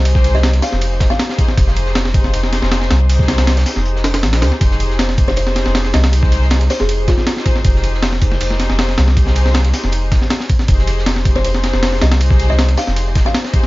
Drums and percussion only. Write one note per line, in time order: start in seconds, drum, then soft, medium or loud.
0.05 closed hi-hat loud
0.05 ride loud
0.15 kick loud
0.15 snare soft
0.24 snare soft
0.24 closed hi-hat medium
0.24 ride medium
0.35 snare soft
0.43 snare loud
0.43 closed hi-hat medium
0.43 ride medium
0.53 snare soft
0.53 ride soft
0.63 snare soft
0.63 closed hi-hat medium
0.63 open hi-hat medium
0.72 snare soft
0.81 closed hi-hat medium
0.81 ride medium
1.00 kick medium
1.00 snare loud
1.00 closed hi-hat medium
1.00 ride medium
1.10 snare soft
1.19 snare loud
1.19 closed hi-hat medium
1.19 ride medium
1.29 snare soft
1.38 kick medium
1.38 closed hi-hat medium
1.38 ride medium
1.48 snare soft
1.57 kick loud
1.57 closed hi-hat medium
1.57 ride medium
1.67 snare medium
1.76 closed hi-hat medium
1.76 ride medium
1.86 snare soft
1.95 snare loud
1.95 closed hi-hat medium
1.95 ride medium
2.05 snare medium
2.05 snare soft
2.14 kick loud
2.14 closed hi-hat medium
2.14 ride medium
2.24 snare soft
2.34 closed hi-hat medium
2.34 ride medium
2.43 snare soft
2.53 snare medium
2.53 closed hi-hat medium
2.53 ride medium
2.62 snare medium
2.62 snare soft
2.72 snare loud
2.72 closed hi-hat medium
2.72 ride medium
2.81 snare soft
2.90 snare loud
2.90 closed hi-hat medium
2.90 ride medium
3.09 closed hi-hat medium
3.09 ride loud
3.19 kick loud
3.19 snare soft
3.28 snare loud
3.28 closed hi-hat medium
3.28 ride medium
3.38 snare loud
3.38 snare medium
3.38 closed hi-hat medium
3.38 ride medium
3.47 snare loud
3.47 closed hi-hat medium
3.47 ride medium
3.57 snare medium
3.57 closed hi-hat medium
3.57 ride soft
3.66 snare soft
3.66 closed hi-hat medium
3.66 open hi-hat medium
3.76 snare soft
3.85 closed hi-hat medium
3.96 snare soft
4.04 snare loud
4.04 closed hi-hat medium
4.04 ride medium
4.14 snare loud
4.14 snare soft
4.14 ride medium
4.23 snare loud
4.23 closed hi-hat medium
4.23 ride medium
4.33 snare loud
4.33 snare medium
4.33 ride medium
4.42 snare loud
4.42 closed hi-hat medium
4.42 ride medium
4.52 snare soft
4.61 kick loud
4.61 closed hi-hat medium
4.61 ride medium
4.71 snare soft
4.80 closed hi-hat medium
4.80 ride medium
4.90 snare soft
4.99 snare loud
4.99 closed hi-hat medium
4.99 ride medium
5.09 snare medium
5.09 snare soft
5.18 kick loud
5.18 closed hi-hat medium
5.18 ride medium
5.28 snare soft
5.36 closed hi-hat medium
5.36 ride medium
5.47 snare soft
5.56 snare soft
5.56 snare medium
5.56 closed hi-hat medium
5.56 ride medium
5.66 snare medium
5.75 snare loud
5.75 open hi-hat medium
5.75 ride medium
5.85 snare soft
5.93 snare loud
5.93 closed hi-hat medium
5.93 ride medium
6.04 snare loud
6.04 ride medium
6.13 closed hi-hat loud
6.13 ride medium
6.23 kick loud
6.23 snare soft
6.32 snare soft
6.32 closed hi-hat medium
6.32 ride medium
6.42 snare soft
6.50 snare loud
6.50 closed hi-hat medium
6.50 ride medium
6.61 snare soft
6.61 ride soft
6.70 snare soft
6.70 closed hi-hat medium
6.70 open hi-hat medium
6.80 snare soft
6.89 closed hi-hat medium
6.89 ride medium
7.08 kick loud
7.08 snare loud
7.08 closed hi-hat medium
7.08 ride medium
7.18 snare soft
7.27 snare loud
7.27 closed hi-hat medium
7.27 ride medium
7.37 snare soft
7.46 kick medium
7.46 closed hi-hat medium
7.46 ride medium
7.56 snare soft
7.65 kick loud
7.65 closed hi-hat medium
7.65 ride medium
7.75 snare medium
7.84 closed hi-hat medium
7.84 ride medium
7.94 snare soft
8.03 snare loud
8.03 closed hi-hat medium
8.03 ride medium
8.12 snare soft
8.22 kick loud
8.22 closed hi-hat medium
8.22 ride medium
8.32 snare soft
8.41 closed hi-hat medium
8.41 ride medium
8.50 snare soft
8.60 snare medium
8.60 snare soft
8.60 closed hi-hat medium
8.60 ride medium
8.70 snare medium
8.79 snare loud
8.79 open hi-hat medium
8.79 ride medium
8.89 snare soft
8.98 snare loud
8.98 closed hi-hat medium
8.98 ride medium
9.08 snare soft
9.17 kick medium
9.17 closed hi-hat medium
9.17 ride medium
9.27 snare soft
9.36 snare soft
9.36 closed hi-hat medium
9.36 ride medium
9.46 snare soft
9.54 snare loud
9.54 closed hi-hat medium
9.54 ride medium
9.65 snare soft
9.65 ride soft
9.73 snare soft
9.73 closed hi-hat medium
9.73 open hi-hat medium
9.84 snare soft
9.92 closed hi-hat medium
9.92 ride medium
10.12 kick loud
10.12 snare loud
10.12 closed hi-hat medium
10.12 ride medium
10.22 snare soft
10.30 snare loud
10.30 closed hi-hat medium
10.30 ride medium
10.40 snare soft
10.49 kick medium
10.49 closed hi-hat medium
10.49 ride medium
10.59 snare soft
10.68 kick loud
10.68 closed hi-hat medium
10.68 ride loud
10.78 snare soft
10.87 closed hi-hat medium
10.87 ride medium
10.99 snare soft
11.06 snare loud
11.06 closed hi-hat medium
11.06 ride medium
11.16 snare medium
11.16 snare soft
11.25 kick loud
11.25 closed hi-hat medium
11.25 ride medium
11.36 snare soft
11.45 closed hi-hat medium
11.45 ride medium
11.54 snare soft
11.63 snare medium
11.63 snare soft
11.63 closed hi-hat medium
11.63 ride medium
11.73 snare medium
11.83 snare loud
11.83 open hi-hat medium
11.83 ride medium
11.92 snare soft
12.01 snare loud
12.01 closed hi-hat medium
12.01 ride medium
12.11 snare loud
12.11 ride medium
12.21 closed hi-hat medium
12.21 ride medium
12.30 kick loud
12.30 snare soft
12.40 snare soft
12.40 closed hi-hat medium
12.40 ride medium
12.50 snare soft
12.59 snare loud
12.59 closed hi-hat medium
12.59 ride medium
12.69 snare soft
12.69 ride soft
12.78 snare soft
12.78 closed hi-hat medium
12.78 open hi-hat medium
12.87 snare soft
12.96 closed hi-hat medium
12.96 ride medium
13.15 kick loud
13.15 snare loud
13.15 closed hi-hat medium
13.15 ride medium
13.25 snare soft
13.35 snare loud
13.35 closed hi-hat medium
13.35 ride medium
13.45 snare soft
13.54 kick loud
13.54 closed hi-hat medium
13.54 ride medium
13.63 snare soft